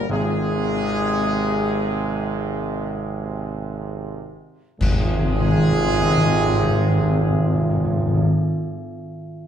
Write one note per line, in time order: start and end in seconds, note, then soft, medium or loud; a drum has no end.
0.09 4.35 G#1 medium
0.09 1.75 G#2 loud
0.09 4.35 C3 loud
0.09 4.35 G#3 medium
0.09 3.56 G#3 loud
0.09 3.52 G#4 loud
4.80 8.30 G#1 loud
4.80 4.88 G#2 medium
4.80 8.31 C3 loud
4.80 8.31 G#3 loud
4.80 8.31 G#4 loud
4.80 concert bass drum medium
4.80 crash medium
4.88 4.95 G#2 medium
4.95 5.02 G#2 medium
5.02 5.10 G#2 medium
5.10 5.18 G#2 medium
5.18 5.25 G#2 medium
5.25 5.33 G#2 loud
5.33 5.41 G#2 medium
5.41 5.48 G#2 loud
5.48 5.56 G#2 medium
5.57 5.64 G#2 loud
5.64 5.72 G#2 loud
5.72 5.79 G#2 loud
5.79 5.87 G#2 loud
5.87 5.94 G#2 medium
5.94 6.01 G#2 medium
6.01 6.09 G#2 medium
6.09 6.17 G#2 medium
6.17 6.24 G#2 loud
6.24 6.32 G#2 loud
6.32 6.39 G#2 loud
6.39 6.47 G#2 medium
6.47 6.54 G#2 medium
6.54 6.61 G#2 loud
6.62 6.69 G#2 medium
6.69 6.77 G#2 medium
6.77 6.84 G#2 medium
6.84 6.92 G#2 medium
6.92 6.99 G#2 loud
6.99 7.07 G#2 medium
7.07 7.14 G#2 loud
7.15 7.22 G#2 loud
7.22 7.30 G#2 medium
7.30 7.37 G#2 medium
7.38 7.45 G#2 medium
7.46 7.53 G#2 medium
7.54 7.62 G#2 loud
7.62 7.69 G#2 medium
7.70 7.77 G#2 loud
7.77 7.84 G#2 medium
7.84 7.91 G#2 loud
7.91 7.98 G#2 medium
7.99 8.06 G#2 medium
8.06 8.14 G#2 medium
8.14 8.21 G#2 loud
8.21 8.29 G#2 medium